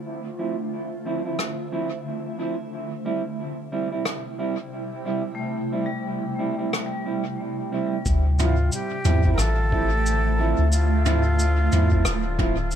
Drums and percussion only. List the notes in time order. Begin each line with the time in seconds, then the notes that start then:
1.39 cross-stick
4.05 cross-stick
6.73 cross-stick
8.06 kick, cabasa
8.39 mid tom, cabasa
8.72 cabasa
9.05 mid tom, cabasa
9.25 kick
9.38 cross-stick, cabasa
9.72 kick
10.06 cabasa
10.72 cabasa
11.06 mid tom, cabasa
11.39 cabasa
11.72 mid tom, cabasa
11.92 kick
12.05 cross-stick, cabasa
12.39 kick, mid tom
12.71 cabasa